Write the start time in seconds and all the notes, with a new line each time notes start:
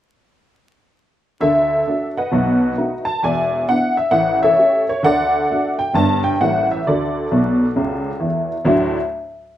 1.40 D2 D3 A4 E5
1.87 A3 D4 F#4
2.17 B4 D#5 F#5
2.31 B1 B2
2.77 A3 D#4 F#4
3.05 A5
3.23 E1 E2 D5 E5 G#5
3.69 B3 D4 E4 F#5
3.97 E5
4.11 A1 A2 F#5
4.43 A4 C#5 E5
4.58 A3 C#4 G4
4.89 C#5
5.03 D2 D3 A4 D5 F#5
5.50 A3 D4 F#4
5.79 G5
5.93 G1 G2 G3 B3 D4 A5
6.24 G5
6.41 A1 A2 G3 A#3 C#4 F#5
6.71 E5
6.86 D2 D3 F#4 A4 D5
7.31 B1 B2
7.76 C#2 C#3
8.20 E2 E3
8.65 D2 A2 F#3 A3 D4 F#4